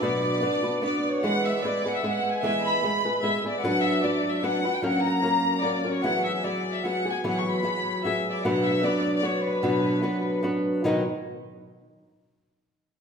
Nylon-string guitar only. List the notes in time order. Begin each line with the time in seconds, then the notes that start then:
0.02 B2 F#3 B3 D4 F#4 B4
0.41 B3 D4 F#4 B4
0.63 B3 D4 F#4 B4
0.82 B3 D4 F#4 B4
1.23 E3 G#3 B3 G#4 B4
1.63 G#3 B3 G#4 B4
1.85 B3 G#4 B4
2.03 G#3 B3 G#4 B4
2.43 E3 G#3 B3 G#4 B4
2.83 G#3 B3 G#4 B4
3.05 B3 G#4 B4
3.23 G#3 B3 G#4 B4
3.45 B3 G#4 B4
3.64 F#3 D4 F#4 B4
4.03 F#3 D4 F#4 B4
4.43 F#3 D4 F#4 B4
4.64 D4 F#4 B4
4.82 F#3 A#3 C#4 F#4 A#4
5.22 A#3 C#4 F#4 A#4
5.62 A#3 C#4 F#4 A#4
5.84 C#4 F#4 A#4
6.04 E3 F#3 B3 F#4 G#4
6.44 F#3 B3 F#4 G#4
6.84 F#3 B3 F#4 G#4
7.05 B3 F#4 G#4
7.24 E3 F#3 B3 F#4 G#4
7.63 F#3 B3 F#4 G#4
8.04 F#3 B3 F#4 G#4
8.45 B2 F#3 B3 D4 F#4 B4
8.83 B3 D4 F#4 B4
9.23 B3 D4 F#4 B4
9.63 B2 F#3 B3 D4 F#4 B4
10.02 B3 D4 F#4 B4
10.43 B3 D4 F#4 B4
10.84 B2 D#3 F#3 B3 D#4 B4